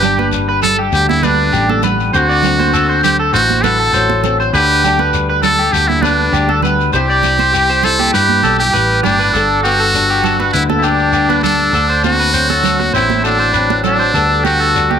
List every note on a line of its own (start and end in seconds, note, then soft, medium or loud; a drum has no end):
0.00 0.89 G1 loud
0.00 2.14 G2 medium
0.00 0.29 G4 loud
0.00 0.18 G4 medium
0.00 low conga medium
0.00 shekere medium
0.04 0.65 D4 medium
0.18 0.47 B4 medium
0.18 high conga medium
0.32 1.53 G3 medium
0.32 shekere medium
0.49 0.62 B4 medium
0.63 0.78 A4 medium
0.63 0.77 A4 medium
0.63 muted nylon-string guitar stroke medium
0.63 low conga medium
0.63 shekere medium
0.79 1.08 G4 medium
0.93 1.49 D2 loud
0.93 2.11 D3 medium
0.93 1.08 G4 medium
0.93 shekere medium
1.08 1.25 E4 medium
1.08 high conga medium
1.23 1.84 D4 medium
1.23 3.64 D4 soft
1.23 1.52 B4 medium
1.23 high conga medium
1.23 low conga medium
1.23 shekere medium
1.53 2.10 A1 medium
1.53 2.10 G3 medium
1.53 1.68 G4 medium
1.53 shekere loud
1.69 1.83 A4 medium
1.69 high conga medium
1.83 2.11 B3 medium
1.83 2.12 B4 medium
1.83 low conga medium
1.83 shekere medium
2.00 shekere soft
2.13 3.30 D2 loud
2.13 4.51 D3 medium
2.13 2.43 C4 medium
2.13 3.00 F#4 medium
2.13 2.29 C5 medium
2.13 shekere medium
2.29 2.58 D5 medium
2.29 shekere soft
2.43 4.23 C4 medium
2.43 low conga medium
2.43 shekere medium
2.60 2.73 C5 medium
2.60 high conga medium
2.73 2.89 A4 medium
2.73 shekere medium
2.89 3.18 C5 medium
3.03 3.17 G4 medium
3.03 low conga medium
3.03 shekere medium
3.19 3.33 A4 medium
3.33 3.89 A1 loud
3.33 4.51 A2 medium
3.33 3.65 F#4 loud
3.33 3.62 C5 medium
3.33 shekere medium
3.50 high conga medium
3.63 4.51 F#4 soft
3.63 4.23 A4 loud
3.63 3.79 B4 medium
3.63 high conga medium
3.63 low conga medium
3.63 shekere medium
3.80 3.93 A4 medium
3.93 4.49 A1 medium
3.93 4.51 F#3 medium
3.93 4.22 C5 medium
3.93 shekere medium
4.10 high conga medium
4.24 4.51 C4 medium
4.24 4.39 A4 medium
4.24 low conga medium
4.24 shekere medium
4.40 4.53 C5 medium
4.40 shekere soft
4.53 5.69 D2 loud
4.53 5.72 D3 medium
4.53 4.84 D4 medium
4.53 5.10 G4 loud
4.53 4.82 B4 medium
4.53 shekere medium
4.71 shekere soft
4.84 5.43 D4 medium
4.84 4.99 G4 medium
4.84 low conga medium
4.84 shekere medium
4.99 5.28 B4 medium
4.99 high conga medium
5.14 6.32 G3 medium
5.14 shekere medium
5.29 5.43 B4 medium
5.43 6.03 D4 medium
5.43 5.74 A4 loud
5.43 5.58 A4 medium
5.43 low conga medium
5.43 shekere medium
5.59 5.88 G4 medium
5.72 6.29 D2 loud
5.72 6.90 D3 medium
5.72 5.89 G4 medium
5.72 shekere medium
5.88 6.03 E4 medium
5.88 high conga medium
6.02 6.63 D4 medium
6.02 6.94 D4 medium
6.02 6.32 B4 medium
6.02 high conga medium
6.02 low conga medium
6.02 shekere medium
6.32 6.89 D2 medium
6.32 6.94 G3 medium
6.32 6.48 G4 medium
6.32 shekere medium
6.49 6.63 A4 medium
6.49 high conga medium
6.62 6.96 B3 medium
6.62 6.92 B4 medium
6.62 low conga medium
6.62 shekere medium
6.80 shekere soft
6.93 8.10 C2 loud
6.93 8.13 C3 medium
6.93 7.53 G3 medium
6.93 7.24 E4 medium
6.93 7.86 G4 medium
6.93 7.08 C5 medium
6.93 shekere medium
7.10 7.38 D5 medium
7.10 shekere soft
7.23 7.84 E4 medium
7.23 low conga medium
7.23 shekere medium
7.39 7.53 C5 medium
7.39 high conga medium
7.39 shekere soft
7.54 9.31 G3 medium
7.54 7.69 G4 medium
7.54 shekere medium
7.70 7.98 C5 medium
7.70 shekere soft
7.83 8.45 E4 medium
7.83 8.13 A4 loud
7.83 low conga medium
7.83 shekere medium
7.99 8.13 G4 medium
7.99 high conga medium
7.99 shekere soft
8.13 8.41 G2 loud
8.13 8.74 G2 medium
8.13 8.56 G4 medium
8.13 8.42 B4 medium
8.13 shekere medium
8.29 high conga medium
8.43 8.71 B1 medium
8.43 8.61 D4 medium
8.43 8.58 A4 medium
8.43 low conga medium
8.43 shekere medium
8.59 9.34 E4 medium
8.59 9.00 G4 medium
8.59 8.73 G4 medium
8.59 shekere soft
8.73 9.01 A1 medium
8.73 9.02 B4 medium
8.73 muted nylon-string guitar stroke medium
8.73 shekere medium
9.03 9.31 G1 medium
9.03 9.34 A2 medium
9.03 9.59 D4 medium
9.03 9.18 G4 medium
9.03 low conga medium
9.03 shekere medium
9.19 9.33 B4 medium
9.19 shekere soft
9.33 10.50 G1 loud
9.33 11.74 G2 medium
9.33 9.62 A4 medium
9.33 11.74 A4 medium
9.33 shekere medium
9.63 10.54 B3 medium
9.63 10.49 F#4 loud
9.63 9.79 G4 medium
9.63 shekere medium
9.80 10.08 A4 medium
9.80 shekere soft
9.95 11.13 G3 medium
9.95 10.85 D4 medium
9.95 shekere medium
10.10 10.23 G4 medium
10.24 10.39 A4 medium
10.24 low conga medium
10.24 shekere medium
10.40 10.68 B4 medium
10.40 high conga medium
10.40 shekere soft
10.53 11.70 D2 medium
10.53 11.71 D3 medium
10.53 11.14 B3 medium
10.53 10.64 E4 medium
10.53 shekere medium
10.69 10.83 A4 medium
10.69 high conga medium
10.69 shekere soft
10.78 10.85 E4 medium
10.83 11.43 D4 medium
10.83 11.44 D4 soft
10.83 11.12 G4 medium
10.83 shekere medium
10.99 shekere soft
11.13 11.71 G3 medium
11.13 11.71 B3 medium
11.13 11.29 G4 medium
11.13 shekere medium
11.29 11.43 B4 medium
11.29 high conga medium
11.29 shekere soft
11.43 12.00 D4 medium
11.43 11.72 A4 medium
11.43 muted nylon-string guitar stroke medium
11.43 low conga medium
11.43 shekere medium
11.60 shekere soft
11.73 12.89 D2 loud
11.73 14.11 D3 medium
11.73 11.89 A4 medium
11.73 14.11 A4 medium
11.73 shekere medium
11.90 12.18 C5 medium
12.03 12.33 C4 medium
12.03 12.90 F#4 loud
12.03 high conga medium
12.03 shekere medium
12.20 12.33 B4 medium
12.20 shekere soft
12.34 13.53 F#3 medium
12.34 12.93 C4 medium
12.34 12.49 C5 medium
12.34 shekere medium
12.50 12.78 A4 medium
12.50 high conga medium
12.64 low conga medium
12.64 shekere medium
12.79 muted clean electric guitar stroke medium
12.79 high conga medium
12.79 shekere soft
12.93 14.10 A1 medium
12.93 14.11 A2 medium
12.93 13.54 C4 medium
12.93 13.22 E4 medium
12.93 13.22 C5 medium
12.93 shekere medium
13.10 high conga medium
13.10 shekere soft
13.24 13.81 D4 medium
13.24 13.84 F#4 medium
13.24 13.39 A4 medium
13.24 shekere medium
13.40 13.53 C5 medium
13.40 shekere soft
13.53 14.11 F#3 medium
13.53 14.11 C4 medium
13.53 13.82 B4 medium
13.53 shekere medium
13.70 high conga medium
13.70 shekere soft
13.84 14.42 D4 medium
13.84 14.11 F#4 medium
13.84 13.99 A4 medium
13.84 low conga medium
13.84 shekere medium
13.99 14.13 C5 medium
13.99 shekere soft
14.14 14.99 D2 loud
14.14 14.99 D3 medium
14.14 14.75 G3 medium
14.14 14.45 B3 medium
14.14 14.75 D4 medium
14.14 14.43 A4 medium
14.14 14.99 A4 medium
14.14 shekere medium
14.44 14.99 B3 medium
14.44 14.99 F#4 medium
14.44 14.59 G4 medium
14.44 high conga medium
14.44 shekere medium
14.60 14.88 A4 medium
14.60 shekere soft
14.75 14.99 G3 medium
14.75 14.99 D4 medium
14.75 shekere medium
14.90 14.99 G4 medium
14.90 high conga medium